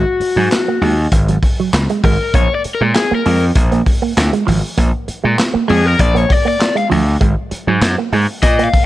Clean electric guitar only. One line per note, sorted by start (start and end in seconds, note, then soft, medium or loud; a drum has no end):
0.22 muted clean electric guitar stroke soft
0.38 0.48 F#3 medium
0.52 muted clean electric guitar stroke soft
0.68 0.78 A#3 medium
0.82 0.94 G#3 medium
1.29 1.39 F#3 medium
1.44 muted clean electric guitar stroke soft
1.60 1.70 F#3 medium
1.74 muted clean electric guitar stroke medium
1.90 2.00 G#3 medium
2.04 2.16 G#3 medium
2.35 2.46 A#3 medium
2.65 muted clean electric guitar stroke soft
2.81 2.92 G#3 medium
2.95 muted clean electric guitar stroke medium
3.11 3.22 A#3 medium
3.26 3.38 G#3 medium
3.72 3.83 A#3 medium
3.86 muted clean electric guitar stroke soft
4.02 4.13 A#3 medium
4.17 muted clean electric guitar stroke soft
4.33 4.44 G#3 medium
4.47 4.59 F3 medium
4.78 4.89 A#3 medium
5.08 muted clean electric guitar stroke soft
5.24 5.34 G#3 medium
5.38 muted clean electric guitar stroke medium
5.54 5.65 A#3 medium
5.68 5.80 G#3 medium
6.15 6.26 A#3 medium
6.29 muted clean electric guitar stroke soft
6.45 6.56 A#3 medium
6.60 muted clean electric guitar stroke soft
6.75 6.86 G#3 medium
6.90 7.02 F3 medium
7.21 7.33 G#3 medium
7.51 muted clean electric guitar stroke soft
7.68 7.78 F#3 medium
7.82 muted clean electric guitar stroke soft
7.98 8.09 A#3 medium
8.13 8.25 G#3 medium
8.59 8.70 A#3 medium
8.74 muted clean electric guitar stroke soft